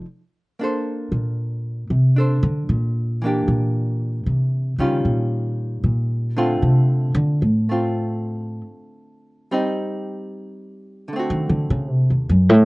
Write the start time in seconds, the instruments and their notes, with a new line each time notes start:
0.59 hollow-body jazz guitar A#3 D4 A4
0.64 hollow-body jazz guitar C5
1.12 upright bass A#2
1.90 upright bass C3
2.16 hollow-body jazz guitar D4 A4 C5
2.43 upright bass D3
2.69 upright bass A#2
3.22 hollow-body jazz guitar E3 A#3 D4
3.26 hollow-body jazz guitar G4
3.48 upright bass A#2
4.26 upright bass C3
4.78 upright bass C#3, hollow-body jazz guitar D#3 G3 C#4 F4
5.05 upright bass A#2
5.84 upright bass A#2
6.37 hollow-body jazz guitar D3 A3 C4 F4
6.62 upright bass C3
7.15 upright bass D3
7.42 upright bass A2
7.69 hollow-body jazz guitar A3 C4 F4
9.51 hollow-body jazz guitar G3 C4 D#4
11.08 hollow-body jazz guitar D3
11.13 hollow-body jazz guitar A3 C4
11.19 hollow-body jazz guitar F#4
11.30 upright bass D#3
11.49 upright bass D3
11.70 upright bass C#3
11.90 upright bass C3
12.10 upright bass D#2
12.29 upright bass F#2
12.49 upright bass A2